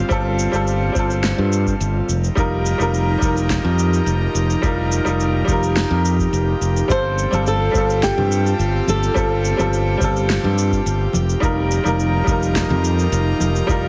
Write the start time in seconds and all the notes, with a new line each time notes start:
Already playing: G3 C4 F4 A4
0.09 G1 G3 C4 F4 A4, kick, shaker
0.39 shaker
0.52 G1 G3 C4 F4 A4, shaker
0.67 shaker
0.92 G1 G3 C4, kick, shaker
0.97 F4 A4
1.10 shaker
1.24 snare, shaker
1.38 G2
1.53 shaker
1.67 kick, shaker
1.80 G1, shaker
2.09 F1 F3 D#4 G4 A#4, shaker
2.24 shaker
2.35 F1 G3 D#4 F4 A#4, kick, shaker
2.66 shaker
2.78 F1 G3 D#4 F4 A#4, shaker
2.94 shaker
3.18 F1 G3 D#4, kick
3.22 F4 A#4, shaker
3.37 shaker
3.50 kick, snare, shaker
3.65 F2
3.79 shaker
3.94 shaker
4.06 F1, shaker
4.35 F1, shaker
4.50 shaker
4.62 F1 G3 D#4 F4 A#4, kick, shaker
4.92 shaker
5.05 F1 G3 D#4 F4 A#4, shaker
5.20 shaker
5.45 F1 G3 D#4, kick, shaker
5.49 F4 A#4
5.63 shaker
5.76 snare, shaker
5.91 F2
6.05 shaker
6.19 kick, shaker
6.33 F1, shaker
6.61 F1, shaker
6.77 shaker
6.88 G1 G3 C4 F4 A4 C5, kick, shaker
7.18 shaker
7.31 G1 G3 C4 F4 A4, high conga, shaker
7.47 A4, shaker
7.71 G1 G3 C4, kick, shaker
7.76 F4 A4
7.90 shaker
8.03 G4, kick, snare, shaker
8.18 G2, high conga, low conga
8.32 shaker
8.47 shaker
8.59 G1, shaker
8.87 G1 A4, high conga, shaker
9.03 shaker
9.14 G1 G3 C4 F4 A4, kick, shaker
9.45 shaker
9.57 G1 G3 C4 F4 A4, high conga, shaker
9.73 shaker
9.97 G1 G3 C4, kick, low conga
10.02 F4 A4, shaker
10.16 shaker
10.30 snare, shaker
10.43 G2, high conga
10.58 shaker
10.72 kick, shaker
10.86 G1, shaker
11.13 F1 F3 D#4 A#4, high conga, shaker
11.29 shaker
11.40 F1 G3 D#4 F4 A#4, kick, shaker
11.71 shaker
11.84 F1 G3 D#4 F4 A#4, high conga, shaker
12.00 shaker
12.24 F1 G3 D#4, kick
12.28 F4 A#4, shaker
12.43 shaker
12.56 kick, snare, shaker
12.70 F2, high conga, low conga
12.85 shaker
12.99 shaker
13.12 F1, shaker
13.40 F1, high conga, shaker
13.56 shaker
13.67 F1 G3 D#4 F4 A#4, kick, shaker